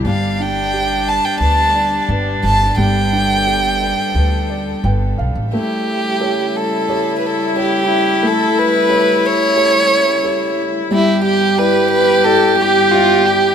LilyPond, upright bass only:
\new Staff \with { instrumentName = "Upright bass" } { \clef bass \time 4/4 \key a \minor \tempo 4 = 89 g,,2 d,4 g,,8 g,,8 | g,,2 d,4 g,,8 b,,16 a,,16 | r1 | r1 |
r1 | }